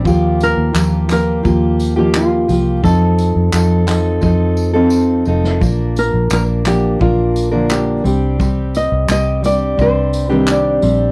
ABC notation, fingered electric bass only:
X:1
M:4/4
L:1/16
Q:1/4=86
K:Bb
V:1 name="Fingered electric bass" clef=bass
E,,3 E,, E,,4 E,,6 C,,2 | F,,3 F,, F,,4 F,,6 F,,,2 | B,,,3 B,,, B,,,4 B,,,6 C,,2- | C,,3 C,, C,,4 C,,6 B,,,2 |]